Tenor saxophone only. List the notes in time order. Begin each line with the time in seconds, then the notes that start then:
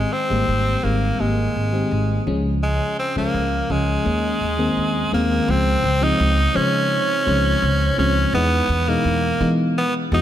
Already playing: G#3
0.12 C4
0.84 A#3
1.20 G#3
2.63 G#3
2.99 C4
3.18 A#3
3.71 G#3
5.14 A#3
5.50 C4
6.04 D#4
6.56 C#4
7.99 C#4
8.35 B3
8.88 A#3
9.78 B3
10.14 D#4